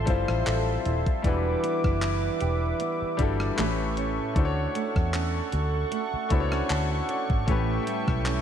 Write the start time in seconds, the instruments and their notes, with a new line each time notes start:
Already playing: nylon-string guitar F3 C4 A4, grand piano G3 C4 E4 F4 A4, analog synth pad A4 E5 A5 C6
0.05 fingered electric bass G1, grand piano G3 C4 E4 F4, nylon-string guitar E4, kick, closed hi-hat
0.10 grand piano C5
0.28 fingered electric bass A1, cross-stick
0.46 fingered electric bass A1, nylon-string guitar A4, clap, closed hi-hat
0.85 fingered electric bass D#1, nylon-string guitar E4, closed hi-hat
1.06 kick, closed hi-hat
1.22 fingered electric bass E1, nylon-string guitar E3, grand piano G3 D4 E4 F#4, analog synth pad B4 D6, kick, closed hi-hat
1.27 grand piano B4
1.63 nylon-string guitar B3, closed hi-hat
1.84 fingered electric bass F#1, kick, cross-stick
2.02 nylon-string guitar D4, clap, closed hi-hat
2.40 fingered electric bass E1, nylon-string guitar G4, closed hi-hat
2.80 nylon-string guitar B3, closed hi-hat
3.02 muted fingered electric bass stroke
3.17 fingered electric bass G1, grand piano G3 D4 E4 F#4, nylon-string guitar D4, kick, closed hi-hat
3.22 grand piano A4
3.40 cross-stick
3.56 fingered electric bass A1, nylon-string guitar A2, grand piano A3 C#4 E4 G4, analog synth pad A4 C#6, clap, closed hi-hat
3.61 grand piano B4
3.97 nylon-string guitar C#4, closed hi-hat
4.34 fingered electric bass D2, grand piano A3 D4 E4 F#4, analog synth pad F#5, kick, closed hi-hat
4.39 grand piano C5
4.45 grand piano C#5
4.75 nylon-string guitar A3, closed hi-hat
4.96 fingered electric bass E2, kick, cross-stick
5.14 nylon-string guitar C#4, clap, closed hi-hat
5.52 fingered electric bass D2, nylon-string guitar F#4, closed hi-hat
5.92 nylon-string guitar A3, closed hi-hat
6.14 muted fingered electric bass stroke
6.29 fingered electric bass C#2, grand piano A3 D4 E4 F#4 B5, nylon-string guitar B3, kick, closed hi-hat
6.34 grand piano C5
6.40 grand piano C#5
6.52 nylon-string guitar C#4, cross-stick
6.70 fingered electric bass D2, nylon-string guitar F#4, grand piano A5, clap, closed hi-hat
6.91 grand piano F#5
7.09 nylon-string guitar C#4, grand piano D5, closed hi-hat
7.30 fingered electric bass G#1, kick
7.46 fingered electric bass A1, nylon-string guitar A2, grand piano A3 C#4 E4 G4, analog synth pad A4 E5 G5, kick, closed hi-hat
7.51 grand piano B4
7.87 nylon-string guitar G3, closed hi-hat
8.08 fingered electric bass B1, kick, cross-stick
8.26 nylon-string guitar C#4, clap, closed hi-hat